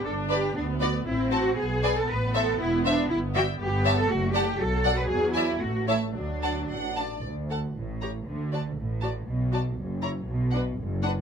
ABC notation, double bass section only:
X:1
M:2/4
L:1/8
Q:1/4=118
K:Ador
V:1 name="Double bass section" clef=bass
G,,,2 D,,2 | A,,,2 B,,,2 | A,,,2 E,,,2 | [K:D] G,,,2 G,,,2 |
F,,,2 B,,,2 | E,,2 A,,,2 | D,,2 A,,,2 | D,,2 A,,,2 |
D,,2 A,,,2 | B,,,2 F,,,2 | B,,,2 F,,,2 |]